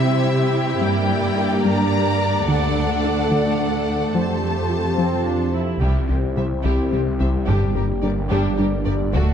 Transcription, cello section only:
Already playing: C3
0.82 G2
2.48 D2
4.15 F2
5.81 C3
6.09 C3
6.37 C3
6.64 C3
6.92 C3
7.19 C3
7.47 G2
7.75 G2
8.03 G2
8.30 G2
8.59 G2
8.86 G2
9.14 D2

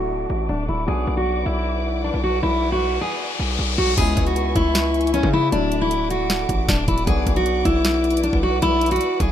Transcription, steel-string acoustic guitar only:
Already playing: F#4
0.49 D4
0.69 E4
0.88 G#4
1.17 F#4
1.46 E4
2.04 D4
2.24 F#4
2.43 E4
2.72 F#4
3.01 G#4
3.78 F#4
3.98 G#4
4.27 F#4
4.56 E4
5.14 C#4
5.33 E4
5.52 D4
5.81 E4
6.11 F#4
6.69 D4
6.88 E4
7.07 G#4
7.37 F#4
7.65 E4
8.24 D4
8.43 F#4
8.62 E4
8.91 F#4
9.21 G#4

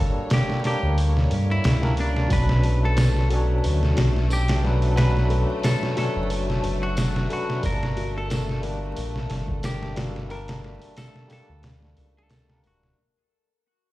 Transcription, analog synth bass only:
Already playing: G1
0.83 D2
1.32 G2
1.65 C#2
2.31 B1
3.66 D2
3.98 B1
6.16 F#1
6.64 F#1
7.64 G1
8.98 A#1
9.30 G1
11.49 D2
11.98 C#2
12.64 D1

